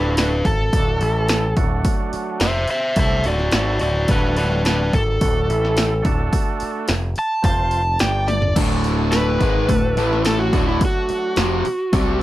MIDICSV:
0, 0, Header, 1, 8, 480
1, 0, Start_track
1, 0, Key_signature, 2, "major"
1, 0, Tempo, 560224
1, 1587, Time_signature, 4, 2, 24, 8
1, 10476, End_track
2, 0, Start_track
2, 0, Title_t, "Electric slide guitar"
2, 0, Program_c, 0, 29
2, 0, Note_on_c, 0, 62, 81
2, 0, Note_on_c, 0, 71, 84
2, 131, Note_off_c, 0, 62, 0
2, 143, Note_off_c, 0, 71, 0
2, 152, Note_on_c, 0, 71, 88
2, 156, Note_on_c, 0, 62, 79
2, 376, Note_off_c, 0, 62, 0
2, 383, Note_off_c, 0, 71, 0
2, 392, Note_on_c, 0, 69, 98
2, 1320, Note_off_c, 0, 69, 0
2, 2064, Note_on_c, 0, 72, 87
2, 2072, Note_on_c, 0, 76, 105
2, 2302, Note_off_c, 0, 76, 0
2, 2305, Note_off_c, 0, 72, 0
2, 2319, Note_on_c, 0, 72, 82
2, 2321, Note_on_c, 0, 76, 105
2, 2536, Note_off_c, 0, 72, 0
2, 2546, Note_off_c, 0, 76, 0
2, 2564, Note_on_c, 0, 72, 84
2, 2570, Note_on_c, 0, 76, 100
2, 2779, Note_off_c, 0, 72, 0
2, 2791, Note_off_c, 0, 76, 0
2, 2793, Note_on_c, 0, 66, 77
2, 2807, Note_on_c, 0, 74, 88
2, 3013, Note_off_c, 0, 66, 0
2, 3030, Note_off_c, 0, 74, 0
2, 3037, Note_on_c, 0, 66, 82
2, 3042, Note_on_c, 0, 74, 85
2, 3255, Note_off_c, 0, 66, 0
2, 3267, Note_off_c, 0, 74, 0
2, 3268, Note_on_c, 0, 66, 73
2, 3276, Note_on_c, 0, 74, 92
2, 3490, Note_off_c, 0, 66, 0
2, 3503, Note_off_c, 0, 74, 0
2, 3514, Note_on_c, 0, 62, 78
2, 3521, Note_on_c, 0, 71, 86
2, 3733, Note_off_c, 0, 62, 0
2, 3743, Note_off_c, 0, 71, 0
2, 3748, Note_on_c, 0, 62, 79
2, 3753, Note_on_c, 0, 71, 89
2, 3970, Note_off_c, 0, 62, 0
2, 3982, Note_off_c, 0, 71, 0
2, 3987, Note_on_c, 0, 62, 86
2, 3992, Note_on_c, 0, 71, 94
2, 4209, Note_off_c, 0, 62, 0
2, 4221, Note_off_c, 0, 71, 0
2, 4237, Note_on_c, 0, 69, 101
2, 5162, Note_off_c, 0, 69, 0
2, 6159, Note_on_c, 0, 81, 113
2, 6375, Note_off_c, 0, 81, 0
2, 6385, Note_on_c, 0, 81, 111
2, 6851, Note_off_c, 0, 81, 0
2, 6861, Note_on_c, 0, 79, 86
2, 7092, Note_on_c, 0, 74, 99
2, 7096, Note_off_c, 0, 79, 0
2, 7331, Note_off_c, 0, 74, 0
2, 7813, Note_on_c, 0, 71, 101
2, 8751, Note_off_c, 0, 71, 0
2, 8791, Note_on_c, 0, 69, 73
2, 8902, Note_on_c, 0, 66, 76
2, 8905, Note_off_c, 0, 69, 0
2, 9138, Note_off_c, 0, 66, 0
2, 9151, Note_on_c, 0, 64, 85
2, 9266, Note_off_c, 0, 64, 0
2, 9298, Note_on_c, 0, 66, 92
2, 10476, Note_off_c, 0, 66, 0
2, 10476, End_track
3, 0, Start_track
3, 0, Title_t, "Tonewheel organ"
3, 0, Program_c, 1, 16
3, 0, Note_on_c, 1, 57, 69
3, 0, Note_on_c, 1, 62, 66
3, 0, Note_on_c, 1, 66, 64
3, 0, Note_on_c, 1, 69, 81
3, 306, Note_off_c, 1, 57, 0
3, 306, Note_off_c, 1, 62, 0
3, 308, Note_off_c, 1, 66, 0
3, 310, Note_off_c, 1, 69, 0
3, 645, Note_on_c, 1, 62, 66
3, 649, Note_on_c, 1, 57, 65
3, 656, Note_on_c, 1, 66, 63
3, 659, Note_on_c, 1, 69, 78
3, 868, Note_off_c, 1, 57, 0
3, 872, Note_on_c, 1, 52, 72
3, 876, Note_off_c, 1, 62, 0
3, 876, Note_off_c, 1, 69, 0
3, 878, Note_on_c, 1, 57, 69
3, 882, Note_off_c, 1, 66, 0
3, 884, Note_on_c, 1, 64, 67
3, 886, Note_on_c, 1, 69, 82
3, 1253, Note_off_c, 1, 52, 0
3, 1256, Note_off_c, 1, 57, 0
3, 1260, Note_off_c, 1, 64, 0
3, 1261, Note_off_c, 1, 69, 0
3, 1338, Note_on_c, 1, 57, 80
3, 1342, Note_on_c, 1, 54, 94
3, 1349, Note_on_c, 1, 66, 102
3, 1350, Note_on_c, 1, 62, 82
3, 2110, Note_off_c, 1, 57, 0
3, 2112, Note_off_c, 1, 54, 0
3, 2115, Note_off_c, 1, 66, 0
3, 2116, Note_off_c, 1, 62, 0
3, 2537, Note_on_c, 1, 54, 74
3, 2543, Note_on_c, 1, 57, 68
3, 2545, Note_on_c, 1, 62, 64
3, 2546, Note_on_c, 1, 69, 80
3, 2860, Note_off_c, 1, 54, 0
3, 2863, Note_off_c, 1, 57, 0
3, 2864, Note_off_c, 1, 62, 0
3, 2865, Note_off_c, 1, 69, 0
3, 3025, Note_on_c, 1, 54, 68
3, 3028, Note_on_c, 1, 64, 69
3, 3029, Note_on_c, 1, 57, 61
3, 3029, Note_on_c, 1, 62, 56
3, 3344, Note_off_c, 1, 54, 0
3, 3346, Note_off_c, 1, 57, 0
3, 3346, Note_off_c, 1, 62, 0
3, 3346, Note_off_c, 1, 64, 0
3, 3511, Note_on_c, 1, 54, 71
3, 3520, Note_on_c, 1, 62, 70
3, 3522, Note_on_c, 1, 57, 68
3, 3523, Note_on_c, 1, 66, 81
3, 4145, Note_off_c, 1, 54, 0
3, 4150, Note_off_c, 1, 62, 0
3, 4151, Note_off_c, 1, 57, 0
3, 4152, Note_off_c, 1, 66, 0
3, 4463, Note_on_c, 1, 54, 69
3, 4470, Note_on_c, 1, 62, 73
3, 4474, Note_on_c, 1, 66, 83
3, 4475, Note_on_c, 1, 57, 67
3, 4694, Note_off_c, 1, 57, 0
3, 4704, Note_off_c, 1, 54, 0
3, 4704, Note_on_c, 1, 52, 79
3, 4705, Note_on_c, 1, 57, 75
3, 4707, Note_off_c, 1, 62, 0
3, 4709, Note_off_c, 1, 66, 0
3, 4713, Note_on_c, 1, 64, 78
3, 4713, Note_on_c, 1, 69, 90
3, 5088, Note_off_c, 1, 52, 0
3, 5088, Note_off_c, 1, 57, 0
3, 5093, Note_off_c, 1, 64, 0
3, 5093, Note_off_c, 1, 69, 0
3, 5162, Note_on_c, 1, 62, 77
3, 5166, Note_on_c, 1, 57, 90
3, 5169, Note_on_c, 1, 66, 85
3, 5181, Note_on_c, 1, 69, 105
3, 5941, Note_off_c, 1, 62, 0
3, 5943, Note_off_c, 1, 57, 0
3, 5945, Note_off_c, 1, 66, 0
3, 5950, Note_off_c, 1, 69, 0
3, 6360, Note_on_c, 1, 53, 82
3, 6364, Note_on_c, 1, 60, 68
3, 6374, Note_on_c, 1, 65, 73
3, 6379, Note_on_c, 1, 72, 79
3, 6691, Note_off_c, 1, 53, 0
3, 6693, Note_off_c, 1, 60, 0
3, 6698, Note_off_c, 1, 65, 0
3, 6701, Note_off_c, 1, 72, 0
3, 6850, Note_on_c, 1, 55, 64
3, 6856, Note_on_c, 1, 62, 61
3, 6862, Note_on_c, 1, 67, 61
3, 6866, Note_on_c, 1, 74, 72
3, 7176, Note_off_c, 1, 55, 0
3, 7179, Note_off_c, 1, 62, 0
3, 7182, Note_off_c, 1, 67, 0
3, 7184, Note_off_c, 1, 74, 0
3, 7328, Note_on_c, 1, 57, 70
3, 7335, Note_on_c, 1, 62, 60
3, 7346, Note_on_c, 1, 66, 67
3, 7349, Note_on_c, 1, 69, 68
3, 7975, Note_off_c, 1, 57, 0
3, 7979, Note_off_c, 1, 62, 0
3, 7984, Note_off_c, 1, 66, 0
3, 7985, Note_off_c, 1, 69, 0
3, 8304, Note_on_c, 1, 57, 70
3, 8307, Note_on_c, 1, 62, 67
3, 8317, Note_on_c, 1, 66, 62
3, 8323, Note_on_c, 1, 69, 76
3, 8529, Note_off_c, 1, 57, 0
3, 8533, Note_off_c, 1, 69, 0
3, 8533, Note_on_c, 1, 64, 80
3, 8536, Note_on_c, 1, 52, 81
3, 8539, Note_on_c, 1, 57, 83
3, 8543, Note_on_c, 1, 69, 93
3, 8547, Note_off_c, 1, 62, 0
3, 8552, Note_off_c, 1, 66, 0
3, 8924, Note_off_c, 1, 64, 0
3, 8926, Note_off_c, 1, 52, 0
3, 8927, Note_off_c, 1, 57, 0
3, 8929, Note_off_c, 1, 69, 0
3, 9019, Note_on_c, 1, 54, 70
3, 9028, Note_on_c, 1, 62, 63
3, 9029, Note_on_c, 1, 57, 68
3, 9043, Note_on_c, 1, 66, 83
3, 9792, Note_off_c, 1, 54, 0
3, 9796, Note_off_c, 1, 62, 0
3, 9797, Note_off_c, 1, 57, 0
3, 9804, Note_off_c, 1, 66, 0
3, 10220, Note_on_c, 1, 54, 78
3, 10226, Note_on_c, 1, 57, 76
3, 10232, Note_on_c, 1, 62, 80
3, 10234, Note_on_c, 1, 66, 97
3, 10476, Note_off_c, 1, 54, 0
3, 10476, Note_off_c, 1, 57, 0
3, 10476, Note_off_c, 1, 62, 0
3, 10476, Note_off_c, 1, 66, 0
3, 10476, End_track
4, 0, Start_track
4, 0, Title_t, "Distorted electric guitar"
4, 0, Program_c, 2, 30
4, 7337, Note_on_c, 2, 38, 81
4, 7344, Note_on_c, 2, 45, 97
4, 7352, Note_on_c, 2, 50, 95
4, 8055, Note_off_c, 2, 38, 0
4, 8058, Note_off_c, 2, 45, 0
4, 8062, Note_off_c, 2, 50, 0
4, 8067, Note_on_c, 2, 44, 77
4, 8068, Note_on_c, 2, 51, 79
4, 8077, Note_on_c, 2, 56, 97
4, 8298, Note_off_c, 2, 44, 0
4, 8300, Note_off_c, 2, 51, 0
4, 8301, Note_on_c, 2, 38, 57
4, 8304, Note_off_c, 2, 56, 0
4, 8308, Note_on_c, 2, 45, 62
4, 8496, Note_off_c, 2, 38, 0
4, 8499, Note_off_c, 2, 45, 0
4, 8544, Note_on_c, 2, 45, 90
4, 8551, Note_on_c, 2, 52, 83
4, 8554, Note_on_c, 2, 57, 86
4, 9018, Note_off_c, 2, 45, 0
4, 9021, Note_on_c, 2, 38, 84
4, 9022, Note_off_c, 2, 52, 0
4, 9023, Note_off_c, 2, 57, 0
4, 9030, Note_on_c, 2, 45, 92
4, 9037, Note_on_c, 2, 50, 90
4, 9252, Note_off_c, 2, 38, 0
4, 9261, Note_off_c, 2, 45, 0
4, 9265, Note_off_c, 2, 50, 0
4, 9740, Note_on_c, 2, 41, 98
4, 9748, Note_on_c, 2, 48, 92
4, 9751, Note_on_c, 2, 53, 91
4, 9976, Note_off_c, 2, 41, 0
4, 9981, Note_off_c, 2, 48, 0
4, 9982, Note_off_c, 2, 53, 0
4, 10219, Note_on_c, 2, 48, 87
4, 10227, Note_on_c, 2, 55, 84
4, 10236, Note_on_c, 2, 60, 90
4, 10448, Note_off_c, 2, 48, 0
4, 10454, Note_off_c, 2, 55, 0
4, 10465, Note_off_c, 2, 60, 0
4, 10476, End_track
5, 0, Start_track
5, 0, Title_t, "Picked electric bass"
5, 0, Program_c, 3, 34
5, 0, Note_on_c, 3, 26, 92
5, 351, Note_off_c, 3, 26, 0
5, 385, Note_on_c, 3, 32, 88
5, 609, Note_off_c, 3, 32, 0
5, 623, Note_on_c, 3, 26, 71
5, 848, Note_off_c, 3, 26, 0
5, 868, Note_on_c, 3, 33, 88
5, 1314, Note_off_c, 3, 33, 0
5, 1343, Note_on_c, 3, 26, 86
5, 1568, Note_off_c, 3, 26, 0
5, 2065, Note_on_c, 3, 29, 87
5, 2289, Note_off_c, 3, 29, 0
5, 2543, Note_on_c, 3, 36, 84
5, 2767, Note_off_c, 3, 36, 0
5, 2783, Note_on_c, 3, 26, 75
5, 3008, Note_off_c, 3, 26, 0
5, 3023, Note_on_c, 3, 32, 105
5, 3247, Note_off_c, 3, 32, 0
5, 3265, Note_on_c, 3, 26, 75
5, 3488, Note_off_c, 3, 26, 0
5, 3504, Note_on_c, 3, 26, 90
5, 4190, Note_off_c, 3, 26, 0
5, 4229, Note_on_c, 3, 32, 95
5, 4450, Note_off_c, 3, 32, 0
5, 4467, Note_on_c, 3, 26, 85
5, 4689, Note_off_c, 3, 26, 0
5, 4708, Note_on_c, 3, 33, 86
5, 5153, Note_off_c, 3, 33, 0
5, 5184, Note_on_c, 3, 26, 96
5, 5407, Note_off_c, 3, 26, 0
5, 5906, Note_on_c, 3, 29, 90
5, 6128, Note_off_c, 3, 29, 0
5, 6376, Note_on_c, 3, 29, 98
5, 6826, Note_off_c, 3, 29, 0
5, 6865, Note_on_c, 3, 31, 95
5, 7311, Note_off_c, 3, 31, 0
5, 7334, Note_on_c, 3, 26, 93
5, 8026, Note_off_c, 3, 26, 0
5, 8057, Note_on_c, 3, 32, 87
5, 8284, Note_off_c, 3, 32, 0
5, 8302, Note_on_c, 3, 26, 78
5, 8528, Note_off_c, 3, 26, 0
5, 8543, Note_on_c, 3, 33, 84
5, 8992, Note_off_c, 3, 33, 0
5, 9022, Note_on_c, 3, 26, 80
5, 9248, Note_off_c, 3, 26, 0
5, 9746, Note_on_c, 3, 29, 85
5, 9970, Note_off_c, 3, 29, 0
5, 10223, Note_on_c, 3, 36, 83
5, 10449, Note_off_c, 3, 36, 0
5, 10476, End_track
6, 0, Start_track
6, 0, Title_t, "Muted distorted electric guitar strokes"
6, 9263, Note_on_c, 9, 29, 56
6, 9348, Note_off_c, 9, 29, 0
6, 9508, Note_on_c, 9, 29, 52
6, 9594, Note_off_c, 9, 29, 0
6, 9979, Note_on_c, 9, 29, 52
6, 10065, Note_off_c, 9, 29, 0
6, 10476, End_track
7, 0, Start_track
7, 0, Title_t, "Muted picked electric bass strokes"
7, 1585, Note_on_c, 9, 29, 41
7, 1671, Note_off_c, 9, 29, 0
7, 1831, Note_on_c, 9, 29, 40
7, 1917, Note_off_c, 9, 29, 0
7, 2305, Note_on_c, 9, 29, 43
7, 2390, Note_off_c, 9, 29, 0
7, 5420, Note_on_c, 9, 29, 45
7, 5506, Note_off_c, 9, 29, 0
7, 5677, Note_on_c, 9, 29, 41
7, 5763, Note_off_c, 9, 29, 0
7, 6148, Note_on_c, 9, 29, 44
7, 6233, Note_off_c, 9, 29, 0
7, 9263, Note_on_c, 9, 29, 41
7, 9349, Note_off_c, 9, 29, 0
7, 9511, Note_on_c, 9, 29, 36
7, 9596, Note_off_c, 9, 29, 0
7, 9988, Note_on_c, 9, 29, 40
7, 10074, Note_off_c, 9, 29, 0
7, 10476, End_track
8, 0, Start_track
8, 0, Title_t, "Drums"
8, 147, Note_on_c, 9, 46, 83
8, 154, Note_on_c, 9, 38, 113
8, 232, Note_off_c, 9, 46, 0
8, 240, Note_off_c, 9, 38, 0
8, 385, Note_on_c, 9, 36, 99
8, 387, Note_on_c, 9, 46, 55
8, 470, Note_off_c, 9, 36, 0
8, 473, Note_off_c, 9, 46, 0
8, 625, Note_on_c, 9, 36, 96
8, 627, Note_on_c, 9, 46, 86
8, 711, Note_off_c, 9, 36, 0
8, 712, Note_off_c, 9, 46, 0
8, 863, Note_on_c, 9, 46, 57
8, 949, Note_off_c, 9, 46, 0
8, 1101, Note_on_c, 9, 46, 85
8, 1109, Note_on_c, 9, 38, 112
8, 1187, Note_off_c, 9, 46, 0
8, 1194, Note_off_c, 9, 38, 0
8, 1342, Note_on_c, 9, 46, 55
8, 1343, Note_on_c, 9, 36, 101
8, 1428, Note_off_c, 9, 36, 0
8, 1428, Note_off_c, 9, 46, 0
8, 1582, Note_on_c, 9, 46, 81
8, 1583, Note_on_c, 9, 36, 102
8, 1668, Note_off_c, 9, 36, 0
8, 1668, Note_off_c, 9, 46, 0
8, 1824, Note_on_c, 9, 46, 57
8, 1910, Note_off_c, 9, 46, 0
8, 2056, Note_on_c, 9, 46, 75
8, 2064, Note_on_c, 9, 38, 112
8, 2142, Note_off_c, 9, 46, 0
8, 2149, Note_off_c, 9, 38, 0
8, 2292, Note_on_c, 9, 46, 57
8, 2378, Note_off_c, 9, 46, 0
8, 2536, Note_on_c, 9, 46, 83
8, 2540, Note_on_c, 9, 36, 108
8, 2621, Note_off_c, 9, 46, 0
8, 2626, Note_off_c, 9, 36, 0
8, 2775, Note_on_c, 9, 46, 54
8, 2860, Note_off_c, 9, 46, 0
8, 2903, Note_on_c, 9, 38, 31
8, 2989, Note_off_c, 9, 38, 0
8, 3012, Note_on_c, 9, 46, 77
8, 3020, Note_on_c, 9, 38, 111
8, 3098, Note_off_c, 9, 46, 0
8, 3105, Note_off_c, 9, 38, 0
8, 3252, Note_on_c, 9, 46, 51
8, 3337, Note_off_c, 9, 46, 0
8, 3496, Note_on_c, 9, 46, 82
8, 3501, Note_on_c, 9, 36, 113
8, 3582, Note_off_c, 9, 46, 0
8, 3587, Note_off_c, 9, 36, 0
8, 3740, Note_on_c, 9, 46, 63
8, 3826, Note_off_c, 9, 46, 0
8, 3985, Note_on_c, 9, 46, 81
8, 3993, Note_on_c, 9, 38, 111
8, 4071, Note_off_c, 9, 46, 0
8, 4078, Note_off_c, 9, 38, 0
8, 4227, Note_on_c, 9, 36, 103
8, 4227, Note_on_c, 9, 46, 57
8, 4313, Note_off_c, 9, 36, 0
8, 4313, Note_off_c, 9, 46, 0
8, 4465, Note_on_c, 9, 46, 82
8, 4466, Note_on_c, 9, 36, 97
8, 4551, Note_off_c, 9, 46, 0
8, 4552, Note_off_c, 9, 36, 0
8, 4712, Note_on_c, 9, 46, 62
8, 4798, Note_off_c, 9, 46, 0
8, 4838, Note_on_c, 9, 38, 34
8, 4924, Note_off_c, 9, 38, 0
8, 4941, Note_on_c, 9, 46, 81
8, 4949, Note_on_c, 9, 38, 113
8, 5027, Note_off_c, 9, 46, 0
8, 5034, Note_off_c, 9, 38, 0
8, 5182, Note_on_c, 9, 46, 55
8, 5183, Note_on_c, 9, 36, 106
8, 5267, Note_off_c, 9, 46, 0
8, 5268, Note_off_c, 9, 36, 0
8, 5421, Note_on_c, 9, 36, 102
8, 5423, Note_on_c, 9, 46, 80
8, 5507, Note_off_c, 9, 36, 0
8, 5509, Note_off_c, 9, 46, 0
8, 5655, Note_on_c, 9, 46, 57
8, 5741, Note_off_c, 9, 46, 0
8, 5892, Note_on_c, 9, 46, 73
8, 5900, Note_on_c, 9, 38, 109
8, 5978, Note_off_c, 9, 46, 0
8, 5985, Note_off_c, 9, 38, 0
8, 6132, Note_on_c, 9, 46, 51
8, 6218, Note_off_c, 9, 46, 0
8, 6373, Note_on_c, 9, 36, 103
8, 6373, Note_on_c, 9, 46, 75
8, 6459, Note_off_c, 9, 36, 0
8, 6459, Note_off_c, 9, 46, 0
8, 6607, Note_on_c, 9, 46, 55
8, 6693, Note_off_c, 9, 46, 0
8, 6849, Note_on_c, 9, 46, 79
8, 6856, Note_on_c, 9, 38, 109
8, 6934, Note_off_c, 9, 46, 0
8, 6942, Note_off_c, 9, 38, 0
8, 7096, Note_on_c, 9, 46, 53
8, 7096, Note_on_c, 9, 48, 60
8, 7182, Note_off_c, 9, 46, 0
8, 7182, Note_off_c, 9, 48, 0
8, 7213, Note_on_c, 9, 43, 84
8, 7299, Note_off_c, 9, 43, 0
8, 7335, Note_on_c, 9, 36, 103
8, 7337, Note_on_c, 9, 46, 71
8, 7337, Note_on_c, 9, 49, 103
8, 7420, Note_off_c, 9, 36, 0
8, 7422, Note_off_c, 9, 46, 0
8, 7422, Note_off_c, 9, 49, 0
8, 7576, Note_on_c, 9, 46, 55
8, 7662, Note_off_c, 9, 46, 0
8, 7812, Note_on_c, 9, 46, 73
8, 7819, Note_on_c, 9, 38, 105
8, 7897, Note_off_c, 9, 46, 0
8, 7905, Note_off_c, 9, 38, 0
8, 8058, Note_on_c, 9, 36, 93
8, 8059, Note_on_c, 9, 46, 54
8, 8144, Note_off_c, 9, 36, 0
8, 8145, Note_off_c, 9, 46, 0
8, 8300, Note_on_c, 9, 36, 91
8, 8303, Note_on_c, 9, 46, 78
8, 8385, Note_off_c, 9, 36, 0
8, 8389, Note_off_c, 9, 46, 0
8, 8543, Note_on_c, 9, 46, 54
8, 8629, Note_off_c, 9, 46, 0
8, 8675, Note_on_c, 9, 38, 30
8, 8761, Note_off_c, 9, 38, 0
8, 8780, Note_on_c, 9, 46, 81
8, 8787, Note_on_c, 9, 38, 102
8, 8865, Note_off_c, 9, 46, 0
8, 8873, Note_off_c, 9, 38, 0
8, 9022, Note_on_c, 9, 36, 94
8, 9023, Note_on_c, 9, 46, 52
8, 9107, Note_off_c, 9, 36, 0
8, 9109, Note_off_c, 9, 46, 0
8, 9262, Note_on_c, 9, 36, 108
8, 9262, Note_on_c, 9, 46, 73
8, 9347, Note_off_c, 9, 46, 0
8, 9348, Note_off_c, 9, 36, 0
8, 9500, Note_on_c, 9, 46, 51
8, 9586, Note_off_c, 9, 46, 0
8, 9736, Note_on_c, 9, 46, 69
8, 9744, Note_on_c, 9, 38, 100
8, 9822, Note_off_c, 9, 46, 0
8, 9829, Note_off_c, 9, 38, 0
8, 9982, Note_on_c, 9, 46, 51
8, 10067, Note_off_c, 9, 46, 0
8, 10221, Note_on_c, 9, 46, 74
8, 10222, Note_on_c, 9, 36, 112
8, 10306, Note_off_c, 9, 46, 0
8, 10307, Note_off_c, 9, 36, 0
8, 10476, End_track
0, 0, End_of_file